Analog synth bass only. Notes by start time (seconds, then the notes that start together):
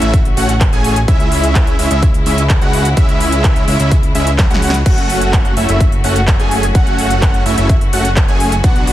0.02 A1
0.37 A1
0.73 A1
1.08 C#2
1.79 C#2
1.91 C#2
2.26 C#2
2.62 C#2
2.97 C#2
3.68 C#2
3.80 C#2
4.15 C#2
4.51 C#2
4.86 F#1
5.57 F#1
5.69 F#1
6.04 F#1
6.40 F#1
6.75 F#1
7.46 F#1
7.58 F#1
7.93 F#1
8.28 F#1
8.64 B1